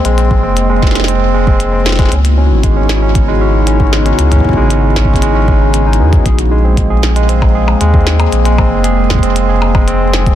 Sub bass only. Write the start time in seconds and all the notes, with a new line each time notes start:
0.05 A#1
0.44 F1
2.12 C#2
2.51 G#1
4.19 C#2
4.57 G#1
6.00 E2
6.26 A#1
7.81 D#2
8.32 A#1
8.71 F1